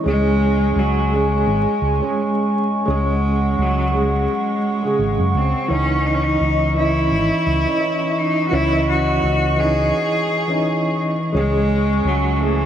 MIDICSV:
0, 0, Header, 1, 5, 480
1, 0, Start_track
1, 0, Key_signature, 4, "minor"
1, 0, Tempo, 705882
1, 34, Time_signature, 4, 2, 24, 8
1, 8606, End_track
2, 0, Start_track
2, 0, Title_t, "Analog synth pad"
2, 0, Program_c, 0, 89
2, 0, Note_on_c, 0, 85, 89
2, 34, Note_on_c, 0, 80, 76
2, 36, Note_on_c, 0, 56, 83
2, 1935, Note_off_c, 0, 80, 0
2, 1957, Note_on_c, 0, 78, 79
2, 3848, Note_off_c, 0, 56, 0
2, 3856, Note_off_c, 0, 78, 0
2, 3870, Note_on_c, 0, 52, 80
2, 3874, Note_on_c, 0, 75, 73
2, 7685, Note_off_c, 0, 52, 0
2, 7687, Note_off_c, 0, 75, 0
2, 7687, Note_off_c, 0, 85, 0
2, 7716, Note_on_c, 0, 80, 78
2, 7716, Note_on_c, 0, 85, 92
2, 7717, Note_on_c, 0, 61, 88
2, 8606, Note_off_c, 0, 61, 0
2, 8606, Note_off_c, 0, 80, 0
2, 8606, Note_off_c, 0, 85, 0
2, 8606, End_track
3, 0, Start_track
3, 0, Title_t, "Felt piano"
3, 0, Program_c, 1, 0
3, 0, Control_c, 1, 64, 127
3, 25, Note_on_c, 1, 56, 85
3, 40, Note_on_c, 1, 61, 84
3, 43, Control_c, 1, 64, 0
3, 54, Note_on_c, 1, 68, 92
3, 147, Control_c, 1, 64, 127
3, 725, Note_off_c, 1, 56, 0
3, 733, Note_off_c, 1, 61, 0
3, 740, Note_off_c, 1, 68, 0
3, 744, Note_on_c, 1, 56, 79
3, 760, Note_on_c, 1, 61, 67
3, 776, Note_on_c, 1, 68, 78
3, 1341, Note_off_c, 1, 56, 0
3, 1348, Note_off_c, 1, 61, 0
3, 1357, Note_off_c, 1, 68, 0
3, 1360, Note_on_c, 1, 56, 83
3, 1374, Note_on_c, 1, 61, 76
3, 1390, Note_on_c, 1, 68, 84
3, 1923, Note_off_c, 1, 56, 0
3, 1930, Note_off_c, 1, 61, 0
3, 1938, Note_off_c, 1, 68, 0
3, 1941, Note_on_c, 1, 56, 92
3, 1955, Note_on_c, 1, 61, 76
3, 1972, Note_on_c, 1, 68, 99
3, 2643, Note_off_c, 1, 56, 0
3, 2650, Note_off_c, 1, 61, 0
3, 2659, Note_off_c, 1, 68, 0
3, 2662, Note_on_c, 1, 56, 75
3, 2675, Note_on_c, 1, 61, 66
3, 2689, Note_on_c, 1, 68, 80
3, 3259, Note_off_c, 1, 56, 0
3, 3266, Note_off_c, 1, 61, 0
3, 3273, Note_off_c, 1, 68, 0
3, 3282, Note_on_c, 1, 56, 80
3, 3296, Note_on_c, 1, 49, 73
3, 3311, Note_on_c, 1, 68, 92
3, 3844, Note_off_c, 1, 56, 0
3, 3851, Note_off_c, 1, 49, 0
3, 3858, Note_off_c, 1, 68, 0
3, 3863, Note_on_c, 1, 52, 89
3, 3877, Note_on_c, 1, 61, 81
3, 3882, Control_c, 1, 64, 0
3, 3892, Note_on_c, 1, 63, 96
3, 4017, Control_c, 1, 64, 127
3, 4564, Note_off_c, 1, 52, 0
3, 4571, Note_off_c, 1, 61, 0
3, 4579, Note_off_c, 1, 63, 0
3, 4585, Note_on_c, 1, 52, 73
3, 4600, Note_on_c, 1, 61, 66
3, 4613, Note_on_c, 1, 75, 83
3, 5181, Note_off_c, 1, 52, 0
3, 5188, Note_off_c, 1, 61, 0
3, 5195, Note_off_c, 1, 75, 0
3, 5205, Note_on_c, 1, 52, 78
3, 5216, Note_on_c, 1, 61, 67
3, 5232, Note_on_c, 1, 75, 88
3, 5766, Note_off_c, 1, 52, 0
3, 5771, Note_off_c, 1, 61, 0
3, 5779, Note_off_c, 1, 75, 0
3, 5785, Note_on_c, 1, 52, 91
3, 5800, Note_on_c, 1, 61, 87
3, 5814, Note_on_c, 1, 75, 97
3, 6485, Note_off_c, 1, 52, 0
3, 6493, Note_off_c, 1, 61, 0
3, 6500, Note_off_c, 1, 75, 0
3, 6502, Note_on_c, 1, 52, 75
3, 6516, Note_on_c, 1, 61, 65
3, 6531, Note_on_c, 1, 63, 79
3, 7099, Note_off_c, 1, 52, 0
3, 7107, Note_off_c, 1, 61, 0
3, 7114, Note_off_c, 1, 63, 0
3, 7123, Note_on_c, 1, 52, 78
3, 7135, Note_on_c, 1, 61, 73
3, 7150, Note_on_c, 1, 63, 88
3, 7685, Note_off_c, 1, 52, 0
3, 7691, Note_off_c, 1, 61, 0
3, 7698, Note_off_c, 1, 63, 0
3, 7701, Note_on_c, 1, 56, 93
3, 7714, Note_on_c, 1, 61, 86
3, 7723, Control_c, 1, 64, 0
3, 7729, Note_on_c, 1, 68, 105
3, 7842, Control_c, 1, 64, 127
3, 8403, Note_off_c, 1, 56, 0
3, 8410, Note_off_c, 1, 61, 0
3, 8417, Note_off_c, 1, 68, 0
3, 8422, Note_on_c, 1, 57, 73
3, 8436, Note_on_c, 1, 61, 65
3, 8450, Note_on_c, 1, 68, 83
3, 8606, Note_off_c, 1, 57, 0
3, 8606, Note_off_c, 1, 61, 0
3, 8606, Note_off_c, 1, 68, 0
3, 8606, End_track
4, 0, Start_track
4, 0, Title_t, "Cello"
4, 0, Program_c, 2, 42
4, 51, Note_on_c, 2, 56, 121
4, 536, Note_on_c, 2, 54, 105
4, 546, Note_off_c, 2, 56, 0
4, 781, Note_on_c, 2, 56, 94
4, 791, Note_off_c, 2, 54, 0
4, 1727, Note_off_c, 2, 56, 0
4, 1972, Note_on_c, 2, 56, 94
4, 2461, Note_on_c, 2, 54, 92
4, 2471, Note_off_c, 2, 56, 0
4, 2697, Note_on_c, 2, 56, 86
4, 2707, Note_off_c, 2, 54, 0
4, 3652, Note_on_c, 2, 60, 88
4, 3662, Note_off_c, 2, 56, 0
4, 3880, Note_off_c, 2, 60, 0
4, 3885, Note_on_c, 2, 61, 107
4, 4122, Note_on_c, 2, 63, 98
4, 4132, Note_off_c, 2, 61, 0
4, 4176, Note_on_c, 2, 61, 88
4, 4187, Note_off_c, 2, 63, 0
4, 4238, Note_on_c, 2, 63, 102
4, 4249, Note_off_c, 2, 61, 0
4, 4599, Note_off_c, 2, 63, 0
4, 4603, Note_on_c, 2, 64, 104
4, 5566, Note_on_c, 2, 63, 106
4, 5577, Note_off_c, 2, 64, 0
4, 5760, Note_off_c, 2, 63, 0
4, 5765, Note_on_c, 2, 66, 84
4, 5803, Note_on_c, 2, 64, 121
4, 5813, Note_off_c, 2, 66, 0
4, 6038, Note_off_c, 2, 64, 0
4, 6044, Note_on_c, 2, 66, 115
4, 6525, Note_on_c, 2, 68, 106
4, 6535, Note_off_c, 2, 66, 0
4, 7479, Note_off_c, 2, 68, 0
4, 7724, Note_on_c, 2, 56, 124
4, 8211, Note_on_c, 2, 54, 103
4, 8221, Note_off_c, 2, 56, 0
4, 8404, Note_off_c, 2, 54, 0
4, 8404, Note_on_c, 2, 54, 64
4, 8447, Note_on_c, 2, 52, 86
4, 8457, Note_off_c, 2, 54, 0
4, 8606, Note_off_c, 2, 52, 0
4, 8606, End_track
5, 0, Start_track
5, 0, Title_t, "Fingered electric bass"
5, 0, Program_c, 3, 33
5, 39, Note_on_c, 3, 37, 98
5, 497, Note_off_c, 3, 37, 0
5, 515, Note_on_c, 3, 37, 102
5, 975, Note_off_c, 3, 37, 0
5, 998, Note_on_c, 3, 32, 98
5, 1119, Note_off_c, 3, 32, 0
5, 1237, Note_on_c, 3, 37, 77
5, 1358, Note_off_c, 3, 37, 0
5, 1957, Note_on_c, 3, 37, 95
5, 2416, Note_off_c, 3, 37, 0
5, 2439, Note_on_c, 3, 37, 98
5, 2897, Note_off_c, 3, 37, 0
5, 3393, Note_on_c, 3, 32, 79
5, 3516, Note_off_c, 3, 32, 0
5, 3533, Note_on_c, 3, 42, 75
5, 3621, Note_off_c, 3, 42, 0
5, 3636, Note_on_c, 3, 37, 104
5, 3758, Note_off_c, 3, 37, 0
5, 3877, Note_on_c, 3, 37, 95
5, 4336, Note_off_c, 3, 37, 0
5, 4359, Note_on_c, 3, 37, 97
5, 4817, Note_off_c, 3, 37, 0
5, 4838, Note_on_c, 3, 32, 95
5, 4959, Note_off_c, 3, 32, 0
5, 5077, Note_on_c, 3, 37, 76
5, 5198, Note_off_c, 3, 37, 0
5, 5798, Note_on_c, 3, 37, 100
5, 6257, Note_off_c, 3, 37, 0
5, 6279, Note_on_c, 3, 37, 105
5, 6737, Note_off_c, 3, 37, 0
5, 7714, Note_on_c, 3, 37, 96
5, 8175, Note_off_c, 3, 37, 0
5, 8193, Note_on_c, 3, 37, 106
5, 8606, Note_off_c, 3, 37, 0
5, 8606, End_track
0, 0, End_of_file